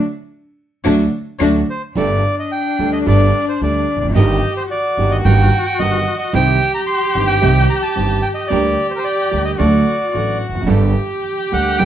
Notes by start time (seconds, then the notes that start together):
0.84 D2 D3 F#3 A3 D4 F#4
1.39 D2 D3 F#3 A3 D4 F#4
1.70 C5
1.94 G1 G2 G3 A3 D4 G4 A4 D5
2.39 D#5
2.52 G5
2.79 D2 D3 G3 A3 D4 G4 A4
2.93 D#5
3.06 G1 G2 G3 A3 D4 G4 A4 D5
3.48 C5
3.61 D2 D3 G3 A3 D4 G4 A4 D5
3.96 E1 E2
4.00 F1 F2 D5
4.09 F#1 F#2
4.14 G1 G2 D#3 G3 A#3 D#4 G4 A#4 D#5
4.57 C5
4.70 F#4 D5
4.97 G1 G2 D#3 G3 A#3 D#4 G4 A#4
5.11 D#5
5.25 G1 G2 D#3 G3 A#3 D#4 G4 A#4 G5
5.66 G5
5.79 G1 G2 D#3 G3 A#3 D#4 G4 A#4 D#5
6.19 D#5
6.33 C2 C3 D#3 G3 C4 D#4 G4 C5 G5
6.75 A#5
6.87 C6
7.15 G1 G2 D#3 G3 C4 D#4 G4 C5
7.27 G5
7.42 C2 C3 D#3 G3 C4 D#4 G4 C5
7.70 A#5
7.82 A5
7.95 G1 G2 D#3 G3 C4 D#4 G4 C5
8.22 G5
8.34 D#5
8.47 D2 D3 G3 A#3 D4 G4 A#4 D5
8.51 D2 G4
8.91 C5
8.96 A#4 C5
9.04 D5
9.31 D2 D3 G3 A#3 D4 G4 A#4
9.45 D#5
9.59 D2 D3 F#3 A3 D4 F#4 A4 D5
10.12 A1 A2 F#3 A3 D4 F#4 A4
10.49 E1 E2
10.55 F1 F2
10.61 F#1 F#2
10.66 G1 G2 G3 A#3 D4 G4 A4
11.52 D2 D3 G3 A#3 D4 G4 A4 F#5
11.78 G1 G2 G3 A#3 D4 G4 A4 G5